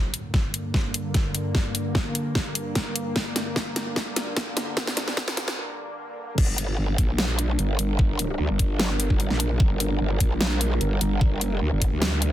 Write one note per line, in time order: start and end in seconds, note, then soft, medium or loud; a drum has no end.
0.00 6.34 G2 medium
0.00 3.13 D3 medium
0.00 6.34 A#3 medium
0.14 closed hi-hat medium
0.34 kick loud
0.34 snare soft
0.54 closed hi-hat medium
0.74 kick medium
0.74 snare medium
0.94 closed hi-hat medium
1.14 kick medium
1.14 snare medium
1.14 closed hi-hat soft
1.35 closed hi-hat medium
1.55 kick medium
1.55 snare medium
1.75 closed hi-hat medium
1.95 kick medium
1.95 snare medium
2.15 closed hi-hat medium
2.35 kick medium
2.35 snare medium
2.55 closed hi-hat medium
2.75 kick medium
2.75 snare medium
2.75 closed hi-hat soft
2.96 closed hi-hat medium
3.16 6.35 D3 medium
3.16 kick loud
3.16 snare medium
3.36 snare medium
3.36 closed hi-hat medium
3.56 kick loud
3.56 snare medium
3.76 snare medium
3.76 closed hi-hat medium
3.96 kick loud
3.96 snare medium
4.16 snare medium
4.16 closed hi-hat medium
4.37 kick loud
4.37 snare medium
4.37 closed hi-hat soft
4.57 snare medium
4.57 closed hi-hat medium
4.77 kick loud
4.77 snare medium
4.87 snare medium
4.97 snare medium
4.97 closed hi-hat medium
5.08 snare medium
5.17 kick loud
5.17 snare loud
5.28 snare medium
5.37 snare loud
5.37 closed hi-hat medium
5.48 snare medium
6.38 6.77 G1 loud
6.38 12.32 G3 medium
6.38 12.32 D4 medium
6.38 12.32 A#4 medium
6.38 kick loud
6.38 crash loud
6.58 closed hi-hat medium
6.78 6.97 G1 loud
6.98 7.57 A#1 medium
6.98 kick medium
6.98 closed hi-hat medium
7.18 snare loud
7.39 closed hi-hat medium
7.59 7.77 G1 medium
7.59 closed hi-hat soft
7.79 8.38 G1 loud
7.79 closed hi-hat medium
7.99 kick loud
8.19 closed hi-hat medium
8.39 8.48 D2 loud
8.50 9.09 G1 loud
8.59 kick medium
8.59 closed hi-hat medium
8.79 snare loud
9.00 closed hi-hat medium
9.10 9.29 G1 medium
9.10 kick medium
9.20 closed hi-hat soft
9.30 9.59 A#1 loud
9.30 snare soft
9.40 closed hi-hat medium
9.60 9.99 G1 loud
9.60 kick loud
9.80 closed hi-hat medium
10.00 10.19 G1 loud
10.20 10.79 A#1 loud
10.20 kick medium
10.20 closed hi-hat medium
10.41 snare loud
10.61 closed hi-hat medium
10.81 11.00 G1 medium
10.81 closed hi-hat soft
11.01 11.43 G1 loud
11.01 closed hi-hat medium
11.21 kick loud
11.41 11.60 F#1 loud
11.41 closed hi-hat medium
11.61 11.70 D2 loud
11.72 11.90 G1 loud
11.82 kick medium
11.82 closed hi-hat medium
11.92 12.31 D2 loud
12.02 snare loud
12.22 closed hi-hat medium